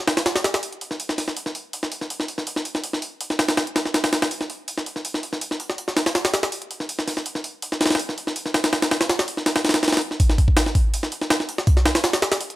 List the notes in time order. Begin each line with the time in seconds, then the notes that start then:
0.08 snare, open hi-hat
0.17 snare, open hi-hat
0.26 snare, open hi-hat
0.36 snare, open hi-hat
0.44 snare, open hi-hat
0.54 snare, open hi-hat
0.63 open hi-hat
0.73 closed hi-hat
0.81 open hi-hat
0.91 snare
1.00 open hi-hat
1.09 snare
1.18 snare, open hi-hat
1.28 snare
1.37 open hi-hat
1.46 snare
1.55 open hi-hat
1.73 open hi-hat
1.83 snare
1.92 open hi-hat
2.01 snare
2.10 open hi-hat
2.20 snare
2.28 open hi-hat
2.38 snare
2.47 open hi-hat
2.56 snare
2.65 open hi-hat
2.75 snare
2.84 open hi-hat
2.93 snare
3.02 open hi-hat
3.21 open hi-hat
3.30 snare
3.39 snare, open hi-hat
3.48 snare, open hi-hat
3.57 snare, open hi-hat
3.67 closed hi-hat
3.76 snare, open hi-hat
3.85 snare
3.94 snare, open hi-hat
4.04 snare, open hi-hat
4.13 snare, open hi-hat
4.22 snare, open hi-hat
4.31 open hi-hat
4.41 snare
4.50 open hi-hat
4.68 open hi-hat
4.78 snare
4.86 open hi-hat
4.96 snare
5.05 open hi-hat
5.14 snare
5.23 open hi-hat
5.33 snare
5.41 open hi-hat
5.51 snare
5.60 open hi-hat
5.70 snare
5.78 open hi-hat
5.88 snare
5.97 snare, open hi-hat
6.06 snare, open hi-hat
6.15 snare, open hi-hat
6.25 snare, open hi-hat
6.34 snare, open hi-hat
6.43 snare, open hi-hat
6.52 open hi-hat
6.62 closed hi-hat
6.71 open hi-hat
6.80 snare
6.89 open hi-hat
6.99 snare
7.08 snare, open hi-hat
7.17 snare
7.26 open hi-hat
7.35 snare
7.44 open hi-hat
7.62 open hi-hat
7.72 snare
7.81 snare, open hi-hat
7.86 snare, open hi-hat
7.90 snare, open hi-hat
7.95 snare, open hi-hat
7.99 open hi-hat
8.09 snare
8.18 open hi-hat
8.27 snare
8.36 open hi-hat
8.46 snare
8.54 snare, open hi-hat
8.64 snare, open hi-hat
8.73 snare, open hi-hat
8.82 snare, open hi-hat
8.91 snare, open hi-hat
9.01 snare, open hi-hat
9.09 snare, open hi-hat
9.19 snare, open hi-hat
9.28 open hi-hat
9.37 snare
9.46 snare, open hi-hat
9.56 snare, open hi-hat
9.65 snare, open hi-hat
9.69 snare, open hi-hat
9.74 snare, open hi-hat
9.83 snare, open hi-hat
9.88 snare, open hi-hat
9.92 snare, open hi-hat
9.97 snare, open hi-hat
10.01 open hi-hat
10.11 snare
10.20 kick, open hi-hat
10.30 snare
10.38 kick, open hi-hat
10.48 kick
10.57 snare, open hi-hat
10.66 snare
10.75 kick, open hi-hat
10.94 open hi-hat
11.03 snare
11.12 open hi-hat
11.21 snare
11.30 snare, open hi-hat
11.40 snare
11.49 open hi-hat
11.58 snare
11.67 kick, open hi-hat
11.77 snare
11.86 snare, open hi-hat
11.95 snare, open hi-hat
12.04 snare, open hi-hat
12.13 snare, open hi-hat
12.22 snare, open hi-hat
12.32 snare, open hi-hat
12.41 open hi-hat
12.50 closed hi-hat